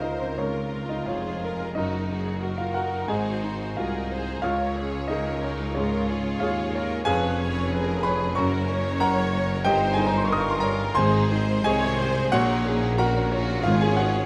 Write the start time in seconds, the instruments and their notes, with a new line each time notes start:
Already playing: grand piano C#2 C#4 D#4 F4 C#5 D#5 F5, cello section C#2, double bass section C#2, tuba C#2, violin section C#4 A#4, viola section C5
0.02 grand piano D#4 A#4 D#5
0.20 grand piano C4 C5
0.38 grand piano C#2 C#4 A#4 C#5, violin section F4, viola section A#4
0.73 grand piano C#4
0.89 grand piano D#4 D#5
1.06 tuba F1, double bass section F1, cello section F2, grand piano F4 C#5 F5, violin section G#4 C5, viola section G#4
1.43 viola section A#4, violin section A#4, grand piano A#4
1.75 double bass section F#1, tuba F#1, cello section F#2, grand piano F#2 D#4 A#4 D#5, violin section D#4 F#4 A#4, viola section F#4
2.09 grand piano D#4, violin section F#4, viola section G#4
2.41 violin section D#4 F#4 A#4, grand piano F#4, viola section A#4
2.58 grand piano F4 F5
2.74 grand piano F#4 A#4 F#5
3.02 grand piano A#5
3.08 tuba G#1, double bass section G#1, grand piano G#2 G#4 D#5 G#5, cello section G#2, violin section G#4, viola section C5
3.43 grand piano D#4, violin section F#4
3.77 double bass section C2, tuba C2, cello section C2, violin section D#4 G#4, grand piano F4 F#4 F5, viola section A#4
4.11 violin section G#4, viola section C5, grand piano C5
4.42 double bass section C#2, tuba C#2, cello section C#2, grand piano C#2 F4 C#5 F5, violin section C#4 A#4 C#5, viola section C#5
4.75 grand piano C#4, violin section G#4, viola section G#4
5.07 violin section C#4 G#4, grand piano D#4 G#4 D#5, viola section A#4
5.41 violin section D#4, grand piano C#5
5.75 grand piano G#2 C#4 G#4 C#5, violin section F4 A#4 C#5, viola section G#4
6.08 grand piano C#4, viola section F4, violin section G#4
6.40 double bass section D#2, tuba D#2, cello section D#2, grand piano F4 G#4 C#5 F5, viola section G#4
6.74 viola section A#4, grand piano C#5
7.05 double bass section F1, tuba F1, cello section F2, grand piano F2 G#4 F5 G#5, violin section C#4 G#4 C#5, viola section B4
7.38 grand piano C#4, violin section B4, viola section C#5
7.71 viola section G#4, violin section A#4, grand piano B4
8.03 violin section G#4, grand piano B4 C#5 B5
8.35 tuba F#1, double bass section F#1, cello section F#2, grand piano F#2 C#5 A#5 C#6, violin section C#4 F#4 A#4, viola section A#4
8.68 grand piano C#4, violin section A#4, viola section C#5
9.00 grand piano A#4 F#5 A#5, violin section C#5
9.34 violin section C#5, grand piano C#5
9.65 double bass section G1, tuba G1, grand piano G2 G4 D#5 G5, cello section G2, violin section D#4 C5, viola section C5
9.94 grand piano G#4 G#5
9.98 grand piano D#4
10.07 grand piano A#5
10.17 grand piano C6
10.25 violin section F4, grand piano C#6
10.29 violin section A#4, viola section A#4, grand piano A#4 D#6
10.40 grand piano C#6
10.50 grand piano C6
10.60 grand piano A#4 C#5 A#5
10.95 tuba G#1, double bass section G#1, timpani G#2, cello section G#2, grand piano G#2 C5 G#5 C6, violin section D#4 G#4 C5, viola section G#4
11.29 violin section C4, grand piano D#4, viola section C5
11.64 tuba C2, double bass section C2, cello section C3, violin section C4 G#4, grand piano G#4 D#5 G#5, viola section C#5
11.99 viola section C5, grand piano C5
12.32 tuba A#1, double bass section A#1, grand piano A#2 F#4 C#5 F#5, cello section A#2, violin section D#4 C#5, viola section A#4
12.65 grand piano C#4, viola section G#4, violin section A#4
12.97 violin section C#4 F#4 A#4, grand piano F#4 A#4 F#5 A#5, viola section F#4
13.32 viola section F4, violin section F#4, grand piano C#5
13.64 tuba G#1, double bass section G#1, cello section G#2, timpani G#2, grand piano G#2 F4 F5, violin section C#4 G#4 C#5
13.81 grand piano G#4 G#5
13.97 grand piano F#4 G#4 C#5 F#5